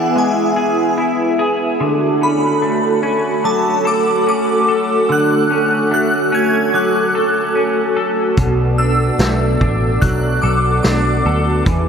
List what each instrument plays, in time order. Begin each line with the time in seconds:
Already playing: clean electric guitar E3 B3 E4, string machine B3 E4 G#4 E5, synth bell F#5, glockenspiel E6
0.16 clean electric guitar G#3, synth bell G#5
0.56 clean electric guitar G#4
0.98 clean electric guitar E4
1.39 clean electric guitar G#4
1.80 clean electric guitar D3, string machine A3 F#4 A4 F#5
2.21 clean electric guitar C#4, synth bell B5
2.62 clean electric guitar A3
3.03 clean electric guitar C#4
3.44 clean electric guitar F#3, synth bell A5, glockenspiel D6
3.85 clean electric guitar A4, synth bell D6
4.27 clean electric guitar C#4, synth bell D6
4.68 clean electric guitar A4
5.09 clean electric guitar D3, glockenspiel E6, synth bell F#6
5.51 clean electric guitar C#4
5.91 clean electric guitar A3, synth bell F#6
6.32 clean electric guitar C#4, synth bell G#6
6.74 clean electric guitar F#3, glockenspiel D6, synth bell F#6
7.15 clean electric guitar A4
7.55 clean electric guitar C#4
7.97 clean electric guitar A4
8.36 picked electric bass B1, clean electric guitar B2, string machine B3 D5, kick, closed hi-hat
8.78 clean electric guitar D4, synth bell E6
9.19 picked electric bass B1, clean electric guitar A3, snare, closed hi-hat
9.61 picked electric bass A1, clean electric guitar D4, kick
10.02 picked electric bass B1, clean electric guitar F#3, synth bell F#6, kick, closed hi-hat
10.42 picked electric bass B1, clean electric guitar A4, synth bell D6
10.83 picked electric bass B1, clean electric guitar D4, synth bell D6, snare, closed hi-hat
11.25 picked electric bass D2, clean electric guitar A4
11.65 picked electric bass E2, clean electric guitar E3, string machine E4 G#4 E5, kick, closed hi-hat